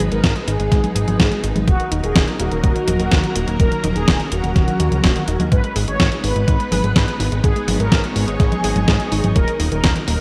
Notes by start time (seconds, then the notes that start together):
Already playing: G#3 B3 D#4 B4
0.00 G#4
0.12 G#1 G#3 A#4, closed hi-hat
0.23 G#1 G#4, kick, snare, closed hi-hat
0.35 G#3, closed hi-hat
0.48 G#1 D#4 G#4, closed hi-hat
0.60 G#1 G#3, closed hi-hat
0.72 G#1 G#3, kick, snare, closed hi-hat
0.84 G#3, closed hi-hat, high conga
0.95 G#1 G#4, closed hi-hat
1.07 G#1 G#3, closed hi-hat, high conga
1.20 G#2 G#4, kick, snare, closed hi-hat
1.32 G#3, closed hi-hat
1.44 G#1 D#4, closed hi-hat
1.55 G#1 G#3, closed hi-hat, high conga
1.68 D#1 D#3 F#3 A#3 F#4 A#4, kick, closed hi-hat
1.80 D#3, closed hi-hat
1.92 D#1 D#4, closed hi-hat
2.04 D#1 D#3 G#4, closed hi-hat
2.16 D#1 D#4, kick, snare, closed hi-hat
2.28 D#3, closed hi-hat
2.40 D#1 A#3 F#4, closed hi-hat
2.52 D#1 D#3, closed hi-hat
2.64 D#1 D#3, kick, closed hi-hat
2.76 D#3, closed hi-hat
2.88 D#1 D#4, closed hi-hat, high conga
3.00 D#1 D#3, closed hi-hat
3.12 D#2 D#4, kick, snare, closed hi-hat
3.24 D#3, closed hi-hat
3.36 D#1 A#3, closed hi-hat
3.48 D#1 D#3, closed hi-hat
3.60 D#1 D#3 C#4 A#4, kick, closed hi-hat
3.72 D#3, closed hi-hat
3.84 D#1 D#4, closed hi-hat, high conga
3.96 D#1 D#3 G#4, closed hi-hat
4.08 D#1 D#4, kick, snare, closed hi-hat
4.20 D#3, closed hi-hat
4.32 D#1 A#3 F#4, closed hi-hat
4.44 D#1 D#3, closed hi-hat
4.56 D#1 D#3, kick, snare, closed hi-hat
4.68 D#3, closed hi-hat, high conga
4.80 D#2 D#3, closed hi-hat
4.92 C#2 F#3, closed hi-hat, high conga
5.04 D#1 D#3, kick, snare, closed hi-hat
5.16 D#3, closed hi-hat
5.28 D#1 D#4, closed hi-hat
5.40 D#2 G#3, closed hi-hat, high conga
5.52 G#1 G#3 B3 D#4 B4, kick, closed hi-hat
5.64 G#3, closed hi-hat
5.76 G#1 G#4, open hi-hat
5.88 G#1 G#3 C#5, closed hi-hat
6.00 G#1 G#4, kick, snare, closed hi-hat
6.12 G#3, closed hi-hat
6.24 G#1 D#4 B4, open hi-hat
6.36 G#1 G#3, closed hi-hat
6.48 G#1 G#3, kick, closed hi-hat
6.60 G#3, closed hi-hat
6.72 G#1 G#4, open hi-hat, high conga
6.84 G#1 G#3, closed hi-hat
6.96 G#2 G#4, kick, snare, closed hi-hat
7.08 G#3, closed hi-hat
7.20 G#1 D#4, open hi-hat
7.32 G#1 G#3, closed hi-hat
7.44 G#1 G#3 G#4 C#5, kick, closed hi-hat
7.56 G#3, closed hi-hat
7.68 G#1 G#4, open hi-hat, high conga
7.80 G#1 G#3 A#4, closed hi-hat
7.92 G#1 G#4, kick, snare, closed hi-hat
8.04 G#3, closed hi-hat
8.16 G#1 D#4 G#4, open hi-hat
8.28 G#1 G#3, closed hi-hat
8.40 G#1 G#3, kick, snare, closed hi-hat
8.52 G#3, closed hi-hat, high conga
8.64 G#1 G#4, open hi-hat
8.76 G#1 G#3, closed hi-hat, high conga
8.88 G#2 G#4, kick, snare, closed hi-hat
9.00 G#3, closed hi-hat
9.12 G#1 D#4, open hi-hat
9.24 G#1 G#3, closed hi-hat, high conga
9.36 D#1 D#3 F#3 A#3 A#4, kick, closed hi-hat
9.48 D#3, closed hi-hat
9.60 D#1 D#4, open hi-hat
9.72 D#1 D#3 A#4, closed hi-hat
9.84 D#1 D#4, kick, snare, closed hi-hat
9.96 D#3, closed hi-hat
10.08 D#1 A#3 A#4, open hi-hat